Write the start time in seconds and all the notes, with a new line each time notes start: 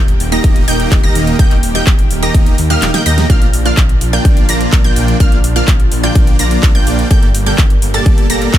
Already playing: D#1 D#3 A#3 G4
0.08 closed hi-hat
0.20 D#1, open hi-hat
0.32 A#3 D#4 G4 D#5 A#5 A#6, closed hi-hat
0.44 D#1, kick, closed hi-hat
0.56 closed hi-hat
0.68 D#1 A#3 D#4 G4 D#5 G5 G6, open hi-hat
0.80 closed hi-hat
0.92 D#1, kick, clap, closed hi-hat
1.04 A#3 D#4 G4 D#5 A#5 A#6, closed hi-hat
1.15 D#1, open hi-hat
1.27 closed hi-hat
1.39 D#1 A#3 D#4 G4 D#5 G5 G6, kick, closed hi-hat
1.51 D#1, clap, closed hi-hat
1.63 D#1, open hi-hat
1.75 A#3 D#4 G4 D#5 G5 G6, closed hi-hat
1.87 D#1, kick, clap, closed hi-hat
1.99 closed hi-hat
2.11 D#1, open hi-hat
2.23 A#3 D#4 G4 D#5 A#5 A#6, closed hi-hat
2.34 D#1, kick, closed hi-hat
2.46 closed hi-hat
2.58 D#2, open hi-hat
2.70 A#3 D#4 G4 D#5 F5 F6, closed hi-hat
2.82 D#1, snare, clap, closed hi-hat
2.94 A#3 D#4 G4 D#5 G5 G6, snare, closed hi-hat
3.06 D#2 A#3 D#4 G4 D#5 A#5 A#6, open hi-hat
3.18 snare, closed hi-hat
3.30 A#1 F3 A#3 D4 F4 D5 F5 F6, kick, closed hi-hat
3.42 A#1, closed hi-hat
3.53 A#1, open hi-hat
3.65 A#3 D4 F4 D5 F5 F6, closed hi-hat
3.77 A#1, kick, clap, closed hi-hat
3.89 closed hi-hat
4.01 A#1, open hi-hat
4.13 A#3 D4 F4 D5 G5 G6, closed hi-hat
4.25 A#1, kick, closed hi-hat
4.37 closed hi-hat
4.49 A#1 A#3 D4 F4 D5 A#5 A#6, open hi-hat
4.61 closed hi-hat
4.72 A#1, kick, clap, closed hi-hat
4.84 A#3 D4 F4 D5 G5 G6, closed hi-hat
4.96 A#1, open hi-hat
5.08 closed hi-hat
5.20 A#1 A#3 D4 F4 D5 F5 F6, kick, closed hi-hat
5.32 A#1, closed hi-hat
5.44 A#1, open hi-hat
5.56 A#3 D4 F4 D5 F5 F6, closed hi-hat
5.68 A#1, kick, clap, closed hi-hat
5.80 closed hi-hat
5.92 A#1, open hi-hat
6.03 A#3 D4 F4 D5 G5 G6, closed hi-hat
6.15 A#1, kick, closed hi-hat
6.27 closed hi-hat
6.39 A#1 A#3 D4 F4 D5 A#5 A#6, open hi-hat
6.51 closed hi-hat
6.63 A#1, kick, clap, closed hi-hat
6.75 A#3 D4 F4 D5 G5 G6, closed hi-hat
6.87 A#1, open hi-hat
6.99 closed hi-hat
7.11 G1 G3 A#3 G4 A4 D5 G5 G6, kick, closed hi-hat
7.23 G1, closed hi-hat
7.35 G1, open hi-hat
7.46 A#3 G4 A4 D5 G5 G6, closed hi-hat
7.58 G1, kick, clap, closed hi-hat
7.70 closed hi-hat
7.82 G1, open hi-hat
7.94 A#3 G4 A4 D5 A5 A6, closed hi-hat
8.06 G1, kick, closed hi-hat
8.18 closed hi-hat
8.30 G1 A#3 G4 A4 D5 A#5 A#6, open hi-hat
8.42 closed hi-hat
8.54 G1, kick, clap, closed hi-hat